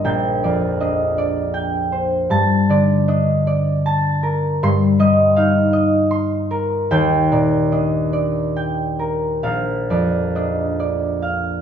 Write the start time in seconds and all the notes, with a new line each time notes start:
Already playing: A#3 D4 A#4 D5 D#5
0.04 A#1 G5
0.44 F2 D5
0.80 D4 D#5
1.18 D5
1.54 G5
1.92 C5
2.30 G2 A5
2.69 D3 D5
3.08 D4 D#5
3.47 D5
3.86 A5
4.23 A#4
4.63 G2 C6
4.99 G3 D#5
5.36 D#4 F5
5.73 D#5
6.11 C6
6.51 A#4
6.91 D#2 G5
7.32 A#2 D5
7.72 D4 D#5
8.13 D5
8.56 G5
8.99 A#4
9.43 A#1 F5
9.90 F2 D5
10.35 D4 D#5
10.80 D5
11.22 F5